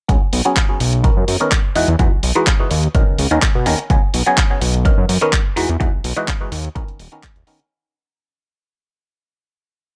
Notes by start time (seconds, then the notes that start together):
0.08 C#2 F#3 B3 C#4 G#4, kick, closed hi-hat
0.33 B1, open hi-hat
0.45 F#3 B3 C#4 G#4, closed hi-hat
0.56 kick, clap, closed hi-hat
0.69 F#3 B3 C#4 G#4
0.80 B1, open hi-hat
0.93 closed hi-hat
1.04 D#3 B3 C#4 A#4, kick, closed hi-hat
1.17 F#2
1.28 F#2, open hi-hat
1.40 D#3 B3 C#4 A#4, closed hi-hat
1.52 kick, clap, closed hi-hat
1.75 E2 E3 G#3 D#4 F#4, open hi-hat
1.88 E2, closed hi-hat
1.99 E2 E3 G#3 D#4 F#4, kick, closed hi-hat
2.12 B1
2.23 B1, open hi-hat
2.35 E3 G#3 D#4 F#4
2.47 kick, clap, closed hi-hat
2.59 E3 G#3 D#4 F#4
2.71 D#2, open hi-hat
2.83 closed hi-hat
2.95 A#1 D#3 B3 C#4 A#4, kick, closed hi-hat
3.07 C#2
3.19 C#2, open hi-hat
3.31 D#2 D#3 B3 C#4 A#4, closed hi-hat
3.42 kick, clap, closed hi-hat
3.55 B2
3.66 D#2 D#3 B3 C#4 A#4, open hi-hat
3.79 closed hi-hat
3.90 C#2 F#3 B3 C#4 G#4, kick, closed hi-hat
4.14 B1, open hi-hat
4.26 F#3 B3 C#4 G#4, closed hi-hat
4.37 kick, clap, closed hi-hat
4.50 F#3 B3 C#4 G#4
4.61 B1, open hi-hat
4.74 closed hi-hat
4.85 D#3 B3 C#4 A#4, kick, closed hi-hat
4.98 F#2
5.09 F#2, open hi-hat
5.21 D#3 B3 C#4 A#4, closed hi-hat
5.33 kick, clap, closed hi-hat
5.56 E2 E3 G#3 D#4 F#4, open hi-hat
5.69 E2, closed hi-hat
5.80 E2 E3 G#3 D#4 F#4, kick, closed hi-hat
5.93 B1
6.04 B1, open hi-hat
6.17 E3 G#3 D#4 F#4, closed hi-hat
6.28 kick, clap, closed hi-hat
6.41 E3 G#3 D#4 F#4
6.52 D#2, open hi-hat
6.65 closed hi-hat
6.75 A#1 D#3 B3 C#4 A#4, kick, closed hi-hat
6.88 D#1, closed hi-hat
6.99 D#1, open hi-hat
7.12 D#3 B3 C#4 A#4, closed hi-hat
7.23 kick, clap, closed hi-hat
7.36 D#1, closed hi-hat
7.47 D#3 B3 C#4 A#4, open hi-hat
7.60 closed hi-hat